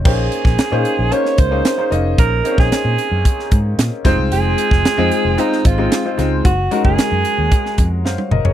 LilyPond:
<<
  \new Staff \with { instrumentName = "Alto saxophone" } { \time 4/4 \key bes \minor \tempo 4 = 113 aes'2 des''8 c''4 r8 | bes'8. aes'2 r4 r16 | aes'2 ees'8 f'4 r8 | ges'8. aes'2 r4 r16 | }
  \new Staff \with { instrumentName = "Grand piano" } { \time 4/4 \key bes \minor <bes des' ees' aes' c''>8. r8 <bes des' ees' aes' c''>8 r16 <bes des' ees' aes' c''>8 r16 <bes des' ees' aes' c''>16 r16 <bes des' ees' aes' c''>16 <bes des' ees' aes' ees''>8~ | <bes des' ees' aes' ees''>16 r16 <bes c' des' ees' aes' c''>4~ <bes c' des' ees' aes' c''>16 r4. r16 <aes c' ees' f' c''>8~ | <aes c' ees' f' c''>4 r16 <aes c' ees' f' c''>8 r16 <aes c' ees' f' c''>8 r16 <aes c' ees' f' c''>16 r16 <aes c' ees' f' c''>16 <aes c' ees' f' c''>8 | r8 <aes des' ees' ges' bes'>4~ <aes des' ees' ges' bes'>16 r4 r16 <c'' f''>8 <bes' ees''>16 <aes' des''>16 | }
  \new Staff \with { instrumentName = "Fingered electric bass" } { \clef bass \time 4/4 \key bes \minor bes,,8 r16 bes,,16 r16 bes,16 r16 bes,,16 r8 des,8 r8 f,,8 | bes,,8 r16 bes,,16 r16 bes,16 r16 ges,16 r8 aes,8 bes,16 r16 f,,16 c,16 | f,,8 r16 f,,16 r16 f,16 r16 f,,16 r8 aes,,8 r8 des,8 | ges,,8 r16 ges,,16 r16 ges,16 r16 ees,16 r8 f,8 ges,16 r16 ges,,16 f,,16 | }
  \new DrumStaff \with { instrumentName = "Drums" } \drummode { \time 4/4 <cymc bd>8 hh16 <bd sn>16 <hh sn>8 hh8 hh16 sn16 <hh bd>8 <hh sn>8 hh8 | <hh bd>8 hh16 <bd sn>16 <hh sn>8 hh8 <hh bd>16 sn16 <hh bd>8 <hh sn>8 <hh bd sn>8 | hh8 hh16 <bd sn>16 <hh sn>8 hh8 hh16 sn16 <hh bd>8 <hh sn>8 <hh sn>8 | <hh bd>8 hh16 bd16 <hh sn>8 hh8 <hh bd>16 sn16 <hh bd>8 sn16 tommh16 toml16 tomfh16 | }
>>